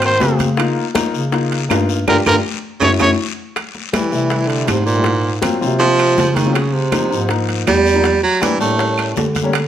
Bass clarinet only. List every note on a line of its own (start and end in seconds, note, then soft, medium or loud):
0.00 0.17 G#2 medium
0.22 0.82 C#3 medium
1.14 1.66 C#3 medium
1.71 2.05 G2 loud
2.07 2.21 G2 medium
2.27 2.40 G2 loud
2.82 2.96 F#2 loud
3.01 3.15 F#2 medium
4.13 4.65 C3 medium
4.69 5.56 G#2 loud
5.62 6.14 C3 medium
6.18 7.05 C#3 loud
7.11 7.63 G#2 medium
7.67 8.28 E2 medium
8.60 9.12 A2 medium
9.16 9.68 D3 medium